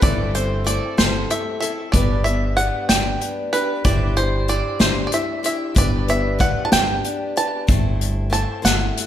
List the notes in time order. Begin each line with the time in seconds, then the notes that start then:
0.01 G1 G2 G3 A3 C4 E4 A4 D5, kick, closed hi-hat
0.34 C4 C5, closed hi-hat
0.64 A3 C4 E4 A4 D5, closed hi-hat
0.97 G1 G3 A3 C4 E4 A4 C5, snare, closed hi-hat
1.30 E4 E5, closed hi-hat
1.60 C4 E4 A4 E5, closed hi-hat
1.92 G1 G2 G3 B3 D4 G4 B4 D5, kick, closed hi-hat
2.24 B3 E5, closed hi-hat
2.57 G3 D4 G4 B4 F#5, closed hi-hat
2.89 G1 G3 D4 G4 B4 G5, snare, closed hi-hat
3.21 D4, closed hi-hat
3.53 D4 G4 B4, closed hi-hat
3.84 G1 G2 G3 D4 E4 G4 C5 D5, kick, closed hi-hat
4.16 D4 C5, closed hi-hat
4.48 G3 D4 E4 C5 D5, closed hi-hat
4.79 G1 G3 D4 E4 C5, snare, closed hi-hat
5.07 D5
5.12 E4 E5, closed hi-hat
5.43 D4 E4 G4 C5 E5, closed hi-hat
5.75 G1 G2 G3 B3 D4 G4 B4 D5, kick, closed hi-hat
6.08 B3 E5, closed hi-hat
6.39 G3 D4 G4 B4 F#5, kick, closed hi-hat
6.65 A5
6.72 G1 G3 D4 G4 B4 G5, snare, closed hi-hat
7.04 D4, closed hi-hat
7.36 D4 G4 B4 A5, closed hi-hat
7.67 G1 G3 A3 C4 E4 C5, kick, closed hi-hat
8.01 closed hi-hat
8.30 A3 C4 E4 C5 A5, closed hi-hat
8.62 G1 G3 A3 C4 E4 C5 F#5, snare, closed hi-hat
8.97 closed hi-hat